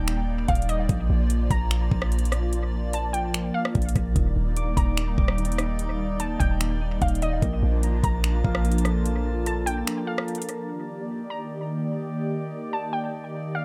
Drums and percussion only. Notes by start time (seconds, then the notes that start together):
0.08 finger snap, closed hi-hat
0.48 kick, closed hi-hat
0.55 closed hi-hat
0.62 closed hi-hat
0.69 closed hi-hat
0.89 kick, closed hi-hat
1.30 closed hi-hat
1.51 kick, closed hi-hat
1.71 finger snap, closed hi-hat
1.92 kick
2.02 cross-stick
2.12 closed hi-hat
2.19 closed hi-hat
2.25 closed hi-hat
2.32 cross-stick, closed hi-hat
2.53 closed hi-hat
2.93 closed hi-hat
3.14 closed hi-hat
3.34 finger snap, closed hi-hat
3.65 cross-stick
3.75 kick, closed hi-hat
3.82 closed hi-hat
3.89 closed hi-hat
3.96 kick, closed hi-hat
4.16 kick, closed hi-hat
4.56 closed hi-hat
4.77 kick, closed hi-hat
4.97 finger snap, closed hi-hat
5.18 kick
5.28 cross-stick
5.38 closed hi-hat
5.45 closed hi-hat
5.52 closed hi-hat
5.58 cross-stick, closed hi-hat
5.79 closed hi-hat
6.20 closed hi-hat
6.40 kick, closed hi-hat
6.61 finger snap, closed hi-hat
7.02 kick, closed hi-hat
7.08 closed hi-hat
7.15 closed hi-hat
7.22 closed hi-hat
7.42 kick, closed hi-hat
7.83 closed hi-hat
8.04 kick, closed hi-hat
8.24 finger snap, closed hi-hat
8.45 kick
8.55 cross-stick
8.65 closed hi-hat
8.72 closed hi-hat
8.78 closed hi-hat
8.85 cross-stick, closed hi-hat
9.06 closed hi-hat
9.46 closed hi-hat
9.67 closed hi-hat
9.87 finger snap, closed hi-hat
10.18 cross-stick
10.28 closed hi-hat
10.35 closed hi-hat
10.42 closed hi-hat
10.49 closed hi-hat